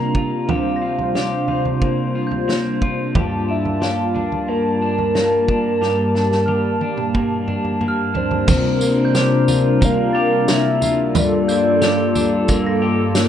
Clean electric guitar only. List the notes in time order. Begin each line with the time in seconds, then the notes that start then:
Already playing: C3 A#3 F4 G4
0.15 F4
0.49 C3 G4
0.82 F4
1.15 G4
1.48 F4
1.82 A#3
2.15 F4
2.48 A#3
2.81 F4
3.15 G2 G4
3.48 D4
3.81 G4
4.15 D4
4.48 A#3
4.82 D4
5.15 A#3
5.48 D4
5.81 G2 G4
6.15 D4
6.48 G4
6.82 D4
7.15 A#3
7.48 D4
7.81 A#3
8.14 D4
8.48 C3
8.82 A#3
9.15 G4
9.48 F4
9.81 A#3
10.15 G4
10.48 A#3
10.81 F4
11.15 G2
11.49 A#3
11.81 G4
12.15 D4
12.49 A#3
12.82 G4
13.16 A#3